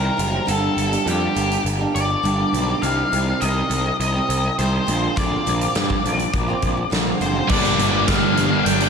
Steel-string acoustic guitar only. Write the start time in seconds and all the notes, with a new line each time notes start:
Already playing: C3 D#3 G3 C4 G4
0.17 D#3 G3 C4 G4
0.32 G3 C4 G4
0.46 G2 D3 G3 A#3 D4 G4
0.77 G3 A#3 D4 G4
0.92 G3 A#3 D4 G4
1.07 G2 D3 G3 A#3 D4 G4
1.35 G3 A#3 D4 G4
1.50 muted steel-string acoustic guitar stroke
1.79 G3 A#3 D4 G4
2.10 muted steel-string acoustic guitar stroke
2.23 G2 D3 G3 A#3 D4 G4
2.53 G3 A#3 D4 G4
2.68 G3 A#3 D4 G4
2.82 C3 D#3 G3 C4 G4
3.12 D#3 G3 C4 G4
3.26 G3 C4 G4
3.41 C3 D#3 G3 C4 G4
3.70 D#3 G3 C4 G4
3.85 muted steel-string acoustic guitar stroke
4.14 G3 C4 G4
4.44 muted steel-string acoustic guitar stroke
4.59 C3 D#3 G3 C4 G4
4.87 A#2 D3 A#3 C4 F4
5.02 A#3 C4 F4
5.16 A#2 D3 A#3 C4 F4
5.46 D3 A#3 C4 F4
5.61 A#3 C4 F4
5.75 A#2 D3 A#3 C4 F4
6.05 D3 A#3 C4 F4
6.18 muted steel-string acoustic guitar stroke
6.48 A#3 C4 F4
6.77 muted steel-string acoustic guitar stroke
6.90 A#2 D3 A#3 C4 F4
7.20 D3 A#3 C4 F4
7.35 A#3 C4 F4